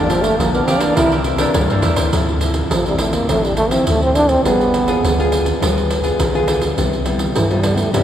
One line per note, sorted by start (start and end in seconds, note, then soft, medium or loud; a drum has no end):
0.00 0.30 G1 loud
0.00 0.37 G2 soft
0.00 0.10 D3 medium
0.00 0.35 F3 medium
0.00 0.35 A#3 medium
0.00 0.35 D4 medium
0.09 0.24 F3 loud
0.09 0.52 G4 soft
0.09 0.52 A#4 soft
0.09 0.53 D5 soft
0.09 0.53 F5 medium
0.09 pandeiro medium
0.22 0.40 A3 medium
0.22 pandeiro medium
0.39 0.64 A#1 medium
0.39 0.95 D3 medium
0.39 0.67 F3 medium
0.39 0.56 A#3 medium
0.39 0.67 A#3 medium
0.39 0.67 D4 medium
0.39 pandeiro medium
0.54 0.68 B3 medium
0.54 0.67 A#4 soft
0.54 0.67 D5 soft
0.54 0.67 F5 soft
0.54 pandeiro soft
0.66 0.81 C4 medium
0.66 0.81 G4 medium
0.66 0.81 A#4 medium
0.66 0.81 D5 medium
0.66 0.80 F5 medium
0.66 pandeiro medium
0.80 1.35 E3 medium
0.80 1.36 A#3 medium
0.80 0.96 D4 medium
0.80 1.36 D4 medium
0.80 0.96 A#4 soft
0.80 0.96 D5 soft
0.80 0.96 F5 medium
0.80 pandeiro medium
0.96 1.46 C2 medium
0.96 1.52 C3 medium
0.96 1.14 E4 medium
0.96 1.11 E4 medium
0.96 1.11 A#4 medium
0.96 1.11 C5 medium
0.96 1.11 E5 medium
0.96 pandeiro medium
1.12 1.21 E4 medium
1.12 1.21 A#4 medium
1.12 1.21 C5 medium
1.12 1.21 E5 medium
1.12 pandeiro soft
1.24 1.37 E4 medium
1.24 1.37 A#4 medium
1.24 1.37 C5 soft
1.24 1.38 E5 medium
1.24 pandeiro medium
1.38 1.64 E3 medium
1.38 1.65 A#3 medium
1.38 1.65 D4 medium
1.38 1.49 E4 medium
1.38 1.49 A#4 medium
1.38 1.49 C5 medium
1.38 1.49 E5 medium
1.38 pandeiro medium
1.54 1.68 C#2 medium
1.54 2.10 G2 medium
1.54 pandeiro medium
1.70 1.83 G2 medium
1.70 2.11 E3 medium
1.70 2.12 A#3 medium
1.70 2.12 D4 medium
1.70 1.81 A#4 soft
1.70 1.82 C5 soft
1.70 1.82 E5 medium
1.70 pandeiro soft
1.82 1.96 E2 medium
1.82 1.96 E4 medium
1.82 1.96 A#4 medium
1.82 1.95 C5 medium
1.82 1.95 E5 medium
1.82 pandeiro medium
1.96 2.11 D2 loud
1.96 2.11 A#4 soft
1.96 2.11 C5 soft
1.96 2.11 E5 soft
1.96 pandeiro medium
2.13 2.63 D2 medium
2.13 2.69 D3 medium
2.13 2.38 F3 medium
2.13 2.38 C4 soft
2.13 2.38 E4 medium
2.13 pandeiro medium
2.29 pandeiro soft
2.41 2.69 F3 soft
2.41 2.70 C4 medium
2.41 2.70 E4 medium
2.41 pandeiro medium
2.54 pandeiro medium
2.71 3.21 A1 medium
2.71 3.27 A2 medium
2.71 2.85 F3 medium
2.71 pandeiro medium
2.86 3.25 F3 medium
2.86 2.98 G3 medium
2.86 3.26 C4 medium
2.86 3.26 E4 medium
2.86 pandeiro soft
2.98 3.15 A3 medium
2.98 pandeiro medium
3.13 3.29 A#3 medium
3.13 pandeiro medium
3.29 3.79 A1 medium
3.29 3.85 D3 medium
3.29 3.57 F3 medium
3.29 3.47 A3 medium
3.29 3.57 C4 medium
3.29 3.57 E4 medium
3.29 pandeiro medium
3.44 3.57 G3 medium
3.44 pandeiro soft
3.57 3.72 A3 medium
3.57 pandeiro medium
3.71 4.11 F3 medium
3.71 3.86 C4 medium
3.71 4.11 C4 medium
3.71 4.11 E4 medium
3.71 pandeiro medium
3.87 4.37 D2 loud
3.87 4.43 A2 soft
3.87 4.01 A3 medium
3.87 pandeiro medium
4.02 4.17 C4 medium
4.02 pandeiro soft
4.15 4.43 F3 soft
4.15 4.43 C4 medium
4.15 4.31 D4 medium
4.15 4.43 E4 medium
4.15 pandeiro medium
4.29 4.44 C4 medium
4.29 pandeiro medium
4.45 4.95 G1 medium
4.45 5.01 G3 soft
4.45 5.28 B3 medium
4.45 4.73 B3 soft
4.45 4.73 F4 medium
4.45 4.73 G#4 medium
4.45 pandeiro medium
4.61 pandeiro soft
4.74 pandeiro medium
4.88 5.13 B3 medium
4.88 5.13 F4 medium
4.88 5.13 G#4 medium
4.88 pandeiro medium
5.03 5.53 D2 medium
5.03 5.58 D3 medium
5.03 pandeiro medium
5.19 5.57 B3 medium
5.19 5.57 F4 medium
5.19 5.58 G#4 medium
5.19 pandeiro soft
5.32 pandeiro medium
5.46 pandeiro medium
5.61 6.11 D2 medium
5.61 6.16 G3 medium
5.61 6.00 B3 medium
5.61 6.00 F4 medium
5.61 6.01 G#4 medium
5.61 pandeiro medium
5.78 pandeiro soft
5.90 pandeiro medium
6.03 6.28 B3 medium
6.03 6.29 F4 medium
6.03 6.29 G#4 medium
6.03 pandeiro soft
6.19 6.69 B1 loud
6.19 6.74 D3 medium
6.19 pandeiro medium
6.34 6.73 B3 medium
6.34 6.73 F4 medium
6.34 6.73 G#4 medium
6.34 pandeiro soft
6.48 pandeiro medium
6.62 pandeiro medium
6.77 7.27 C2 medium
6.77 7.32 C3 medium
6.77 6.94 G3 medium
6.77 6.95 B3 medium
6.77 6.95 E4 medium
6.77 pandeiro medium
6.93 pandeiro soft
7.05 7.33 G3 medium
7.05 7.33 B3 soft
7.05 7.33 E4 medium
7.05 pandeiro medium
7.19 pandeiro medium
7.35 7.90 G2 medium
7.35 7.85 G2 medium
7.35 7.52 E3 medium
7.35 pandeiro medium
7.50 7.64 F3 medium
7.50 7.89 G3 medium
7.50 7.89 B3 medium
7.50 7.89 E4 medium
7.50 pandeiro soft
7.62 7.76 G3 medium
7.62 pandeiro medium
7.75 7.93 A3 medium
7.75 7.79 B3 medium
7.75 pandeiro medium
7.93 8.03 G2 medium
7.93 8.03 C3 medium
7.93 8.03 G3 medium
7.93 8.03 B3 medium
7.93 8.03 E4 medium
7.93 pandeiro medium